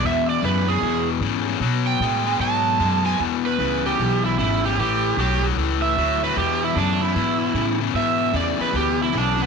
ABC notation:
X:1
M:4/4
L:1/8
Q:"Swing" 1/4=152
K:Emix
V:1 name="Electric slide guitar"
e d B G2 z3 | z =g3 a3 ^g | z B2 =G2 E E G | =G2 G z2 e2 B |
=G E D E4 z | e2 d B =G E D B, |]
V:2 name="Overdriven electric guitar" clef=bass
[E,,B,,]2 [E,,C,] [E,,C,] [E,,B,,]2 [E,,C,] [E,,C,] | [B,,F,]2 [B,,G,] [B,,G,] [B,,F,]2 [B,,G,] [B,,G,] | [E,,B,,]2 [E,,C,] [E,,C,] [E,,B,,]2 [E,,C,] [E,,C,] | [A,,E,]2 [A,,F,] [A,,F,] [A,,E,]2 [A,,F,] [A,,F,] |
[E,,B,,]2 [E,,C,] [E,,C,] [E,,B,,]2 [E,,C,] [E,,C,] | [E,,B,,]2 [E,,C,] [E,,C,] [E,,B,,]2 [E,,C,] [E,,C,] |]
V:3 name="Upright bass" clef=bass
E,,2 F,,2 E,,2 G,,2 | B,,2 A,,2 G,,2 F,,2 | E,,2 C,,2 B,,,2 G,,,2 | A,,,2 B,,,2 C,,2 D,,2 |
E,,2 F,,2 G,,2 A,,2 | G,,2 E,, z D,,2 B,,,2 |]